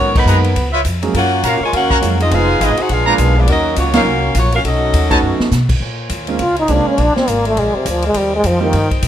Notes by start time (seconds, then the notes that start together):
Already playing: G#2 D#3 F#3 B3 C#4 F#4 A#4 C#5
0.15 D#3 F#3 B3 D#4 A#4 B4, kick, crash
0.25 F#2 F#3 G#3 A#3 B3 D#4 G#4 B4 F#5 A#5, hi-hat pedal
0.44 ride
0.56 C#2, kick, ride
0.72 F4 B4 C#5 E5
0.85 F2, kick, hi-hat pedal, ride
1.03 F#3 G#3 A#3 C#4 G#4, ride
1.14 F#2 A#3 C#4 F4 F#4 A#4 F#5, kick, ride
1.43 A#2 A#3 C#4 F4 F#4 A#4 C#5 F5 A#5, kick, hi-hat pedal, ride
1.60 G#3 F4 A#4 C#5 G#5, muted upright bass stroke
1.72 D#2 A#3 C#4 F#4 A#4 F5 F#5, kick, ride
1.90 F#4 C#5 F5 A#5, kick
2.02 F2 F#3 G#3 A#3 C#4 F4, kick, hi-hat pedal, ride
2.20 C4 D#4 F4 G#4 D#5, ride
2.31 F1 F3 G#3 B3 D#4 F4 G#4 B4 F5, kick, ride
2.60 G#1 G#3 B3 D#4 F4 G#4 B4 D#5 G#5, kick, hi-hat pedal, ride
2.77 D#4 F#4 G#4 C5 F#5, muted upright bass stroke, ride
2.89 A#1 G#3 D4 F4 G#4 B4 F5, kick, ride
3.07 G#3 A#3 B3 D4 F4 G#4 B4 D5 A#5
3.18 B1, kick, hi-hat pedal, ride
3.37 F3 G#3 B3 D4 F4 G#4 D5
3.48 D#2 F#3 A#3 C#4 D#4 F#4 A#4 D#5, kick, ride
3.76 C#2 F#3 A#3 C#4 F4 F#4 C#5, kick, hi-hat pedal, ride
3.93 F#3 A#3 C#4 D#4 F4 F#4 A#4 C#5 F5, snare, ride
4.05 C2
4.35 A#1 F#3 A#3 C#4 F4 F#4 C#5, kick, hi-hat pedal, ride
4.52 A#3 C#4 F4 F#4 A#4 F5, ride
4.64 B1 F#3 A3 C#4 D#4 F#4 A4 D#5, kick, ride
4.93 D#2, kick, hi-hat pedal, ride
5.10 A3 B3 C#4 D#4 F#4 B4 C#5 A5, kick, ride
5.22 F#2
5.39 muted upright bass stroke, snare
5.51 B2, snare, hi-hat pedal
5.69 kick, crash
5.80 A#2 F4 A#4 C#5 G#5, kick
6.09 D#2, kick, hi-hat pedal, ride
6.27 G#3 A#3 C4 C#4 F4, ride
6.39 C#2 F4, kick, ride
6.56 D#4, ride
6.68 C2 G#3 A#3 C4 C#4 D4 F4, kick, hi-hat pedal, ride
6.89 C#4
6.97 A#1 D4 D5, kick, ride
7.16 C4, muted upright bass stroke, snare
7.27 G#1 A#3, kick, hi-hat pedal, ride
7.45 A3, ride
7.56 A#1 G#3, kick, ride
7.73 C3, muted upright bass stroke
7.85 D2 F3, kick, hi-hat pedal, ride
8.02 G#3, ride
8.14 D#2 G3 D#4 C5 G5, kick, ride
8.36 G#3
8.44 F2 F3, kick, hi-hat pedal, ride
8.60 D#3 G3 A#3 C4 D#4 F4
8.73 G2, kick, ride
8.91 kick, ride
9.02 A#2, kick, hi-hat pedal, ride